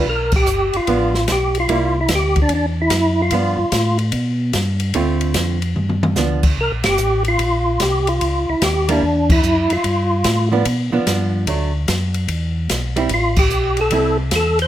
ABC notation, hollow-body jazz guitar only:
X:1
M:4/4
L:1/8
Q:"Swing" 1/4=147
K:G
V:1 name="Hollow-body jazz guitar"
z4 [=F,B,D] z3 | [G,_B,E] z6 z | [=F,B,D] z6 z | [D,A,C=F]3 z3 [=F,B,D] z |
z8 | z3 [G,^A,E] z4 | z3 [=F,B,D] z [F,B,D]3 | [F,A,D] z6 [G,CE] |
z4 [G,CE] z3 |]